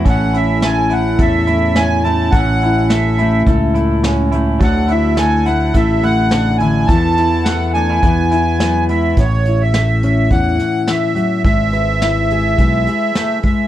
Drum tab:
HH |xxxxxxxx|xxxxxxxx|xxxxxxxx|xxxxxxxx|
SD |--o---o-|--o---o-|--o---o-|--o---o-|
BD |o---o---|o---o---|o---o---|o---o---|

HH |xxxxxxxx|xxxxxxxx|
SD |--o---o-|--o---o-|
BD |o---o---|o---o--o|